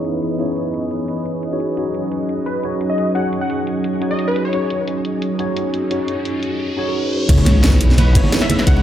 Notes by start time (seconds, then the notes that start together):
Already playing: E3 B3 C#4 D#4 E4 G#4 B4 C#5 D#5
0.05 closed hi-hat
0.22 closed hi-hat
0.38 B3 D#4 E4 G#4 C#5, closed hi-hat
0.57 closed hi-hat
0.74 closed hi-hat
0.91 closed hi-hat
1.08 closed hi-hat
1.26 closed hi-hat
1.43 closed hi-hat
1.52 C#4 D#4 F#4 G#4 C#5
1.60 F#3 G#4, closed hi-hat
1.76 C#4 D#4 F#4 G#4 C#5, closed hi-hat
1.95 closed hi-hat
2.12 closed hi-hat
2.29 closed hi-hat
2.46 B4, closed hi-hat
2.63 C#4 D#4 F#4 G#4 C#5, closed hi-hat
2.81 closed hi-hat
2.90 D#5
2.98 closed hi-hat
3.14 C#4 D#4 F#4 G#4 C#5 F#5, closed hi-hat
3.33 closed hi-hat
3.41 F#5
3.50 closed hi-hat
3.67 closed hi-hat
3.84 closed hi-hat
4.00 C#4 D#4 F#4 G#4 C#5, closed hi-hat
4.11 D#5
4.19 closed hi-hat
4.28 B4
4.36 closed hi-hat
4.45 C#5
4.52 C#4 D#4 F#4 G#4 C#5, closed hi-hat, riser
4.70 closed hi-hat
4.88 closed hi-hat
5.05 closed hi-hat
5.22 closed hi-hat
5.38 C#4 D#4 F#4 G#4 C#5, closed hi-hat
5.57 closed hi-hat
5.74 closed hi-hat
5.90 C#4 D#4 F#4 G#4 C#5, closed hi-hat
6.08 closed hi-hat
6.25 closed hi-hat
6.43 closed hi-hat
6.76 C#4 D#4 F#4 G#4 C#5
7.28 C#2 E3 B3 C#4 D#4 E4 G#4 B4 C#5 D#5, kick, closed hi-hat, crash, ride, impact
7.38 high bongo
7.45 snare, closed hi-hat, ride, high conga
7.63 snare, closed hi-hat, ride
7.73 high conga
7.81 B1, closed hi-hat, ride
7.90 snare
7.98 B4, closed hi-hat, ride, high conga
8.14 G#1 B3 D#4 E4 G#4 C#5, kick, closed hi-hat, open hi-hat, high bongo
8.23 snare, high conga
8.32 snare, closed hi-hat, ride
8.41 E5, snare, high bongo
8.49 closed hi-hat, ride, high conga
8.59 snare
8.66 C#2 B3 D#4 E4 G#4 C#5 F#5, kick, closed hi-hat, ride
8.77 high bongo